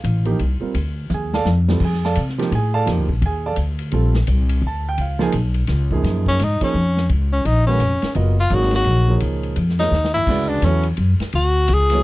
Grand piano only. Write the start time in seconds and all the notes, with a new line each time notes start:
Already playing: F5
0.25 F3 A#3 D#4 G4
0.60 G3 C4 F4 A#4
1.14 G#4 G#5
1.34 A4 D5 F5 A5
1.68 G3 C4 F4 A4
1.85 G#4 G#5
2.05 A4 D5 F5 A5
2.38 F3 A#3 D#4 G4
2.55 G#4 G#5
2.74 A4 D5 F5 A5
2.86 F3 A#3 D#4 G4
3.26 G#4 G#5
3.46 A4 D5 F5 A5
3.92 G3 C4 F4 A4
4.67 A5
4.89 G5
5.01 F5
5.19 F3 A#3 D#4 G#4 G#5
5.92 F#2 F3 A#3 D#4 G#4
6.61 F3 A#3 D#4 G#4 C#5
7.68 D#3 G#3 C#4 F#4 B4
8.15 F#3 B3 F4 A#4 D#5
8.51 F#3 A#3 D#4 G#4 C#5
9.08 F3 A#3 D#4 G#4 C#5
9.79 F3 A#3 D#4 G#4 C#5
10.29 C#3 G#3 F#4 B4 D5
10.64 F#3 B3 E4 A4 C#5
11.93 F#3 B3 E4 A4 C#5